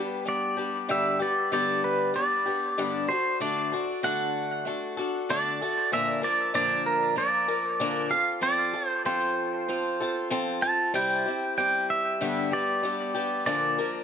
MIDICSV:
0, 0, Header, 1, 3, 480
1, 0, Start_track
1, 0, Tempo, 628272
1, 683, Time_signature, 4, 2, 24, 8
1, 10724, End_track
2, 0, Start_track
2, 0, Title_t, "Pedal steel guitar"
2, 0, Program_c, 0, 26
2, 0, Note_on_c, 0, 71, 91
2, 173, Note_off_c, 0, 71, 0
2, 218, Note_on_c, 0, 74, 82
2, 694, Note_off_c, 0, 74, 0
2, 697, Note_on_c, 0, 76, 86
2, 930, Note_off_c, 0, 76, 0
2, 933, Note_on_c, 0, 74, 81
2, 1164, Note_off_c, 0, 74, 0
2, 1173, Note_on_c, 0, 74, 84
2, 1391, Note_off_c, 0, 74, 0
2, 1407, Note_on_c, 0, 71, 76
2, 1648, Note_on_c, 0, 74, 91
2, 1652, Note_off_c, 0, 71, 0
2, 2355, Note_off_c, 0, 74, 0
2, 2358, Note_on_c, 0, 72, 89
2, 2607, Note_off_c, 0, 72, 0
2, 2609, Note_on_c, 0, 74, 90
2, 3054, Note_off_c, 0, 74, 0
2, 3088, Note_on_c, 0, 78, 111
2, 4014, Note_off_c, 0, 78, 0
2, 4052, Note_on_c, 0, 74, 96
2, 4531, Note_off_c, 0, 74, 0
2, 4534, Note_on_c, 0, 76, 101
2, 4767, Note_off_c, 0, 76, 0
2, 4770, Note_on_c, 0, 74, 88
2, 4997, Note_off_c, 0, 74, 0
2, 5006, Note_on_c, 0, 74, 101
2, 5244, Note_on_c, 0, 70, 83
2, 5250, Note_off_c, 0, 74, 0
2, 5465, Note_off_c, 0, 70, 0
2, 5485, Note_on_c, 0, 74, 99
2, 6194, Note_on_c, 0, 77, 81
2, 6224, Note_off_c, 0, 74, 0
2, 6420, Note_off_c, 0, 77, 0
2, 6438, Note_on_c, 0, 74, 107
2, 6782, Note_off_c, 0, 74, 0
2, 6782, Note_on_c, 0, 72, 107
2, 6889, Note_off_c, 0, 72, 0
2, 6922, Note_on_c, 0, 72, 86
2, 7851, Note_off_c, 0, 72, 0
2, 8116, Note_on_c, 0, 81, 102
2, 8366, Note_off_c, 0, 81, 0
2, 8369, Note_on_c, 0, 79, 108
2, 8815, Note_off_c, 0, 79, 0
2, 8846, Note_on_c, 0, 79, 88
2, 9091, Note_off_c, 0, 79, 0
2, 9093, Note_on_c, 0, 76, 105
2, 9575, Note_on_c, 0, 74, 91
2, 9582, Note_off_c, 0, 76, 0
2, 10276, Note_off_c, 0, 74, 0
2, 10286, Note_on_c, 0, 74, 78
2, 10724, Note_off_c, 0, 74, 0
2, 10724, End_track
3, 0, Start_track
3, 0, Title_t, "Steel-string acoustic guitar"
3, 0, Program_c, 1, 25
3, 0, Note_on_c, 1, 55, 50
3, 0, Note_on_c, 1, 59, 46
3, 0, Note_on_c, 1, 62, 53
3, 0, Note_on_c, 1, 67, 53
3, 185, Note_off_c, 1, 55, 0
3, 193, Note_off_c, 1, 59, 0
3, 194, Note_on_c, 1, 55, 65
3, 195, Note_off_c, 1, 62, 0
3, 201, Note_off_c, 1, 67, 0
3, 202, Note_on_c, 1, 59, 67
3, 205, Note_on_c, 1, 62, 61
3, 210, Note_on_c, 1, 67, 75
3, 424, Note_off_c, 1, 67, 0
3, 432, Note_off_c, 1, 62, 0
3, 433, Note_on_c, 1, 67, 54
3, 434, Note_off_c, 1, 59, 0
3, 438, Note_off_c, 1, 55, 0
3, 441, Note_on_c, 1, 62, 45
3, 443, Note_on_c, 1, 59, 44
3, 449, Note_on_c, 1, 55, 42
3, 669, Note_off_c, 1, 55, 0
3, 676, Note_off_c, 1, 59, 0
3, 676, Note_on_c, 1, 43, 69
3, 678, Note_off_c, 1, 62, 0
3, 678, Note_off_c, 1, 67, 0
3, 678, Note_on_c, 1, 55, 82
3, 681, Note_on_c, 1, 50, 77
3, 685, Note_on_c, 1, 59, 79
3, 687, Note_on_c, 1, 62, 80
3, 687, Note_on_c, 1, 67, 73
3, 902, Note_off_c, 1, 67, 0
3, 908, Note_off_c, 1, 62, 0
3, 911, Note_on_c, 1, 67, 55
3, 916, Note_off_c, 1, 59, 0
3, 918, Note_off_c, 1, 55, 0
3, 918, Note_on_c, 1, 62, 44
3, 919, Note_off_c, 1, 43, 0
3, 922, Note_off_c, 1, 50, 0
3, 925, Note_on_c, 1, 59, 48
3, 928, Note_on_c, 1, 55, 46
3, 1156, Note_off_c, 1, 55, 0
3, 1157, Note_off_c, 1, 67, 0
3, 1158, Note_off_c, 1, 59, 0
3, 1158, Note_off_c, 1, 62, 0
3, 1159, Note_on_c, 1, 50, 72
3, 1160, Note_on_c, 1, 43, 73
3, 1165, Note_on_c, 1, 55, 79
3, 1167, Note_on_c, 1, 59, 73
3, 1167, Note_on_c, 1, 62, 81
3, 1168, Note_on_c, 1, 67, 92
3, 1623, Note_off_c, 1, 55, 0
3, 1632, Note_on_c, 1, 55, 60
3, 1634, Note_off_c, 1, 59, 0
3, 1640, Note_off_c, 1, 67, 0
3, 1641, Note_off_c, 1, 43, 0
3, 1641, Note_off_c, 1, 50, 0
3, 1643, Note_on_c, 1, 59, 58
3, 1645, Note_off_c, 1, 62, 0
3, 1648, Note_on_c, 1, 62, 65
3, 1649, Note_on_c, 1, 67, 56
3, 1868, Note_off_c, 1, 67, 0
3, 1877, Note_off_c, 1, 55, 0
3, 1877, Note_on_c, 1, 67, 47
3, 1878, Note_off_c, 1, 62, 0
3, 1883, Note_off_c, 1, 59, 0
3, 1887, Note_on_c, 1, 62, 49
3, 1893, Note_on_c, 1, 55, 42
3, 1894, Note_on_c, 1, 59, 44
3, 2114, Note_off_c, 1, 55, 0
3, 2118, Note_off_c, 1, 59, 0
3, 2120, Note_off_c, 1, 62, 0
3, 2120, Note_off_c, 1, 67, 0
3, 2122, Note_on_c, 1, 43, 74
3, 2124, Note_on_c, 1, 50, 80
3, 2124, Note_on_c, 1, 55, 89
3, 2128, Note_on_c, 1, 59, 80
3, 2128, Note_on_c, 1, 67, 84
3, 2129, Note_on_c, 1, 62, 89
3, 2361, Note_off_c, 1, 67, 0
3, 2362, Note_off_c, 1, 43, 0
3, 2363, Note_off_c, 1, 50, 0
3, 2363, Note_off_c, 1, 55, 0
3, 2364, Note_on_c, 1, 69, 44
3, 2365, Note_off_c, 1, 59, 0
3, 2366, Note_off_c, 1, 62, 0
3, 2370, Note_on_c, 1, 66, 49
3, 2377, Note_on_c, 1, 62, 41
3, 2595, Note_off_c, 1, 62, 0
3, 2599, Note_off_c, 1, 66, 0
3, 2600, Note_off_c, 1, 69, 0
3, 2600, Note_on_c, 1, 50, 74
3, 2605, Note_on_c, 1, 62, 78
3, 2607, Note_on_c, 1, 57, 75
3, 2608, Note_on_c, 1, 66, 74
3, 2609, Note_on_c, 1, 69, 87
3, 2834, Note_off_c, 1, 69, 0
3, 2841, Note_off_c, 1, 50, 0
3, 2842, Note_off_c, 1, 66, 0
3, 2843, Note_off_c, 1, 62, 0
3, 2843, Note_on_c, 1, 69, 54
3, 2844, Note_off_c, 1, 57, 0
3, 2851, Note_on_c, 1, 66, 51
3, 2858, Note_on_c, 1, 62, 46
3, 3076, Note_off_c, 1, 66, 0
3, 3079, Note_off_c, 1, 62, 0
3, 3079, Note_on_c, 1, 50, 73
3, 3082, Note_off_c, 1, 69, 0
3, 3084, Note_on_c, 1, 57, 81
3, 3085, Note_on_c, 1, 66, 77
3, 3088, Note_on_c, 1, 62, 85
3, 3093, Note_on_c, 1, 69, 88
3, 3544, Note_off_c, 1, 57, 0
3, 3552, Note_off_c, 1, 62, 0
3, 3553, Note_on_c, 1, 57, 60
3, 3556, Note_off_c, 1, 66, 0
3, 3560, Note_off_c, 1, 50, 0
3, 3561, Note_on_c, 1, 62, 60
3, 3562, Note_off_c, 1, 69, 0
3, 3565, Note_on_c, 1, 66, 62
3, 3571, Note_on_c, 1, 69, 69
3, 3788, Note_off_c, 1, 69, 0
3, 3797, Note_off_c, 1, 57, 0
3, 3798, Note_off_c, 1, 66, 0
3, 3798, Note_on_c, 1, 69, 60
3, 3801, Note_off_c, 1, 62, 0
3, 3807, Note_on_c, 1, 66, 52
3, 3813, Note_on_c, 1, 62, 47
3, 4039, Note_off_c, 1, 69, 0
3, 4043, Note_off_c, 1, 62, 0
3, 4044, Note_off_c, 1, 66, 0
3, 4046, Note_on_c, 1, 50, 87
3, 4047, Note_on_c, 1, 57, 76
3, 4052, Note_on_c, 1, 62, 92
3, 4052, Note_on_c, 1, 66, 77
3, 4055, Note_on_c, 1, 69, 95
3, 4281, Note_off_c, 1, 69, 0
3, 4283, Note_off_c, 1, 50, 0
3, 4284, Note_off_c, 1, 57, 0
3, 4284, Note_off_c, 1, 66, 0
3, 4286, Note_off_c, 1, 62, 0
3, 4290, Note_on_c, 1, 69, 51
3, 4293, Note_on_c, 1, 66, 44
3, 4303, Note_on_c, 1, 62, 47
3, 4523, Note_on_c, 1, 46, 74
3, 4525, Note_off_c, 1, 69, 0
3, 4526, Note_off_c, 1, 62, 0
3, 4526, Note_on_c, 1, 53, 80
3, 4527, Note_off_c, 1, 66, 0
3, 4528, Note_on_c, 1, 50, 81
3, 4530, Note_on_c, 1, 58, 83
3, 4532, Note_on_c, 1, 70, 93
3, 4535, Note_on_c, 1, 62, 78
3, 4739, Note_off_c, 1, 70, 0
3, 4741, Note_off_c, 1, 62, 0
3, 4748, Note_on_c, 1, 70, 54
3, 4749, Note_off_c, 1, 58, 0
3, 4750, Note_on_c, 1, 62, 56
3, 4751, Note_off_c, 1, 53, 0
3, 4758, Note_on_c, 1, 58, 49
3, 4760, Note_on_c, 1, 53, 51
3, 4762, Note_off_c, 1, 46, 0
3, 4764, Note_off_c, 1, 50, 0
3, 4991, Note_off_c, 1, 53, 0
3, 4991, Note_off_c, 1, 62, 0
3, 4993, Note_off_c, 1, 58, 0
3, 4994, Note_off_c, 1, 70, 0
3, 4995, Note_on_c, 1, 46, 78
3, 4996, Note_on_c, 1, 50, 75
3, 5000, Note_on_c, 1, 53, 86
3, 5001, Note_on_c, 1, 62, 94
3, 5002, Note_on_c, 1, 58, 90
3, 5002, Note_on_c, 1, 70, 79
3, 5463, Note_off_c, 1, 58, 0
3, 5464, Note_off_c, 1, 53, 0
3, 5464, Note_off_c, 1, 62, 0
3, 5467, Note_on_c, 1, 53, 66
3, 5470, Note_off_c, 1, 70, 0
3, 5472, Note_on_c, 1, 58, 66
3, 5474, Note_on_c, 1, 62, 68
3, 5478, Note_off_c, 1, 46, 0
3, 5478, Note_off_c, 1, 50, 0
3, 5479, Note_on_c, 1, 70, 64
3, 5707, Note_off_c, 1, 70, 0
3, 5709, Note_off_c, 1, 62, 0
3, 5712, Note_off_c, 1, 58, 0
3, 5713, Note_off_c, 1, 53, 0
3, 5716, Note_on_c, 1, 70, 53
3, 5718, Note_on_c, 1, 62, 46
3, 5721, Note_on_c, 1, 58, 49
3, 5732, Note_on_c, 1, 53, 40
3, 5952, Note_off_c, 1, 53, 0
3, 5955, Note_on_c, 1, 46, 78
3, 5957, Note_off_c, 1, 58, 0
3, 5958, Note_off_c, 1, 70, 0
3, 5959, Note_off_c, 1, 62, 0
3, 5959, Note_on_c, 1, 50, 77
3, 5961, Note_on_c, 1, 53, 79
3, 5966, Note_on_c, 1, 58, 86
3, 5967, Note_on_c, 1, 62, 84
3, 5967, Note_on_c, 1, 70, 95
3, 6189, Note_off_c, 1, 70, 0
3, 6192, Note_on_c, 1, 69, 58
3, 6194, Note_off_c, 1, 62, 0
3, 6197, Note_on_c, 1, 65, 54
3, 6198, Note_off_c, 1, 46, 0
3, 6200, Note_off_c, 1, 50, 0
3, 6201, Note_off_c, 1, 53, 0
3, 6203, Note_off_c, 1, 58, 0
3, 6208, Note_on_c, 1, 60, 44
3, 6422, Note_off_c, 1, 60, 0
3, 6423, Note_off_c, 1, 65, 0
3, 6426, Note_off_c, 1, 69, 0
3, 6426, Note_on_c, 1, 53, 73
3, 6431, Note_on_c, 1, 60, 83
3, 6432, Note_on_c, 1, 65, 79
3, 6435, Note_on_c, 1, 69, 86
3, 6664, Note_off_c, 1, 69, 0
3, 6673, Note_off_c, 1, 53, 0
3, 6674, Note_off_c, 1, 65, 0
3, 6674, Note_on_c, 1, 69, 60
3, 6676, Note_off_c, 1, 60, 0
3, 6683, Note_on_c, 1, 65, 49
3, 6691, Note_on_c, 1, 60, 48
3, 6909, Note_off_c, 1, 60, 0
3, 6915, Note_off_c, 1, 65, 0
3, 6917, Note_off_c, 1, 69, 0
3, 6917, Note_on_c, 1, 53, 79
3, 6918, Note_on_c, 1, 60, 88
3, 6925, Note_on_c, 1, 65, 83
3, 6927, Note_on_c, 1, 69, 81
3, 7389, Note_off_c, 1, 53, 0
3, 7392, Note_off_c, 1, 60, 0
3, 7397, Note_off_c, 1, 65, 0
3, 7399, Note_on_c, 1, 53, 64
3, 7401, Note_off_c, 1, 69, 0
3, 7402, Note_on_c, 1, 60, 64
3, 7406, Note_on_c, 1, 65, 67
3, 7410, Note_on_c, 1, 69, 64
3, 7634, Note_off_c, 1, 69, 0
3, 7640, Note_off_c, 1, 53, 0
3, 7641, Note_off_c, 1, 60, 0
3, 7641, Note_off_c, 1, 65, 0
3, 7643, Note_on_c, 1, 69, 67
3, 7650, Note_on_c, 1, 65, 62
3, 7655, Note_on_c, 1, 60, 49
3, 7868, Note_off_c, 1, 60, 0
3, 7869, Note_off_c, 1, 65, 0
3, 7872, Note_on_c, 1, 53, 96
3, 7874, Note_off_c, 1, 69, 0
3, 7877, Note_on_c, 1, 60, 102
3, 7878, Note_on_c, 1, 65, 103
3, 7883, Note_on_c, 1, 69, 104
3, 8106, Note_off_c, 1, 69, 0
3, 8111, Note_off_c, 1, 65, 0
3, 8115, Note_on_c, 1, 69, 59
3, 8117, Note_off_c, 1, 53, 0
3, 8119, Note_off_c, 1, 60, 0
3, 8121, Note_on_c, 1, 65, 55
3, 8128, Note_on_c, 1, 60, 49
3, 8351, Note_off_c, 1, 60, 0
3, 8356, Note_on_c, 1, 48, 77
3, 8356, Note_on_c, 1, 55, 76
3, 8358, Note_off_c, 1, 69, 0
3, 8361, Note_off_c, 1, 65, 0
3, 8361, Note_on_c, 1, 60, 82
3, 8367, Note_on_c, 1, 64, 84
3, 8368, Note_on_c, 1, 67, 76
3, 8592, Note_off_c, 1, 67, 0
3, 8599, Note_off_c, 1, 48, 0
3, 8599, Note_off_c, 1, 55, 0
3, 8601, Note_off_c, 1, 60, 0
3, 8602, Note_on_c, 1, 67, 58
3, 8604, Note_off_c, 1, 64, 0
3, 8612, Note_on_c, 1, 64, 50
3, 8618, Note_on_c, 1, 60, 49
3, 8839, Note_off_c, 1, 60, 0
3, 8842, Note_off_c, 1, 64, 0
3, 8842, Note_off_c, 1, 67, 0
3, 8843, Note_on_c, 1, 55, 63
3, 8848, Note_on_c, 1, 60, 59
3, 8851, Note_on_c, 1, 64, 55
3, 8858, Note_on_c, 1, 67, 70
3, 9323, Note_off_c, 1, 55, 0
3, 9325, Note_off_c, 1, 60, 0
3, 9326, Note_on_c, 1, 43, 79
3, 9327, Note_off_c, 1, 64, 0
3, 9327, Note_off_c, 1, 67, 0
3, 9329, Note_on_c, 1, 50, 85
3, 9335, Note_on_c, 1, 55, 78
3, 9335, Note_on_c, 1, 59, 92
3, 9336, Note_on_c, 1, 67, 87
3, 9337, Note_on_c, 1, 62, 77
3, 9552, Note_off_c, 1, 67, 0
3, 9557, Note_off_c, 1, 62, 0
3, 9561, Note_off_c, 1, 59, 0
3, 9561, Note_on_c, 1, 67, 57
3, 9564, Note_off_c, 1, 43, 0
3, 9566, Note_off_c, 1, 50, 0
3, 9566, Note_on_c, 1, 62, 49
3, 9568, Note_off_c, 1, 55, 0
3, 9570, Note_on_c, 1, 59, 51
3, 9579, Note_on_c, 1, 55, 44
3, 9793, Note_off_c, 1, 55, 0
3, 9802, Note_off_c, 1, 67, 0
3, 9802, Note_on_c, 1, 55, 68
3, 9803, Note_off_c, 1, 59, 0
3, 9804, Note_off_c, 1, 62, 0
3, 9812, Note_on_c, 1, 59, 65
3, 9815, Note_on_c, 1, 62, 66
3, 9817, Note_on_c, 1, 67, 71
3, 10033, Note_off_c, 1, 67, 0
3, 10040, Note_off_c, 1, 62, 0
3, 10042, Note_on_c, 1, 67, 57
3, 10043, Note_off_c, 1, 55, 0
3, 10046, Note_off_c, 1, 59, 0
3, 10049, Note_on_c, 1, 62, 53
3, 10055, Note_on_c, 1, 59, 44
3, 10057, Note_on_c, 1, 55, 43
3, 10283, Note_off_c, 1, 62, 0
3, 10283, Note_off_c, 1, 67, 0
3, 10285, Note_on_c, 1, 46, 86
3, 10286, Note_off_c, 1, 59, 0
3, 10287, Note_off_c, 1, 55, 0
3, 10287, Note_on_c, 1, 50, 86
3, 10289, Note_on_c, 1, 58, 75
3, 10290, Note_on_c, 1, 53, 81
3, 10292, Note_on_c, 1, 62, 85
3, 10296, Note_on_c, 1, 70, 86
3, 10522, Note_off_c, 1, 70, 0
3, 10524, Note_off_c, 1, 46, 0
3, 10525, Note_off_c, 1, 50, 0
3, 10526, Note_off_c, 1, 58, 0
3, 10527, Note_off_c, 1, 53, 0
3, 10528, Note_off_c, 1, 62, 0
3, 10531, Note_on_c, 1, 70, 52
3, 10537, Note_on_c, 1, 62, 48
3, 10541, Note_on_c, 1, 58, 52
3, 10545, Note_on_c, 1, 53, 45
3, 10724, Note_off_c, 1, 53, 0
3, 10724, Note_off_c, 1, 58, 0
3, 10724, Note_off_c, 1, 62, 0
3, 10724, Note_off_c, 1, 70, 0
3, 10724, End_track
0, 0, End_of_file